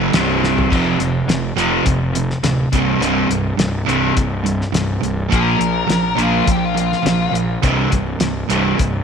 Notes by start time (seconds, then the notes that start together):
Already playing: F#1 F#2 C#3 F#3
0.13 C1 C2 G2 C3, snare, closed hi-hat
0.44 snare
0.58 floor tom
0.71 F1 F2 C3 F3, kick, crash
0.99 F1 F2 C3, closed hi-hat
1.27 F1 F2 C3, snare, closed hi-hat
1.56 F1 F2 C3 F3, closed hi-hat
1.85 F1 F2 C3, kick, closed hi-hat
2.13 F2 C3, closed hi-hat
2.30 snare
2.42 D1 F2 C3, snare, closed hi-hat
2.72 C1 C2 G2 C3, kick, closed hi-hat
3.00 C1 C2 G2 C3, closed hi-hat
3.29 C1 C2 G2, closed hi-hat
3.58 C1 C2 G2, snare, closed hi-hat
3.87 C1 C2 G2 C3, closed hi-hat
4.16 C1 C2 G2, kick, closed hi-hat
4.44 C2 G2, closed hi-hat
4.61 snare
4.73 C1 C2 G2, snare, closed hi-hat
5.02 C1 C2 G2, closed hi-hat
5.31 A#1 A#2 F3 A#3, kick, closed hi-hat
5.36 A#4
5.59 A#1 A#2 F3, closed hi-hat
5.89 A#1 A#2 F3, snare, closed hi-hat
6.17 A#1 A#2 F3 A#3, closed hi-hat
6.23 F4
6.46 A#1 A#2 F3, kick, closed hi-hat
6.52 G4
6.65 F4
6.75 A#2 F3, closed hi-hat
6.80 F4
6.93 snare
7.04 A#1 A#2 F3, snare, closed hi-hat
7.33 A#1 A#2 F3, closed hi-hat
7.63 C1 C2 G2 C3, kick, closed hi-hat
7.92 C1 C2 G2, kick, closed hi-hat
8.19 C1 C2 G2, snare, closed hi-hat
8.49 C1 C2 G2 C3, closed hi-hat
8.79 C1 C2 G2, kick, closed hi-hat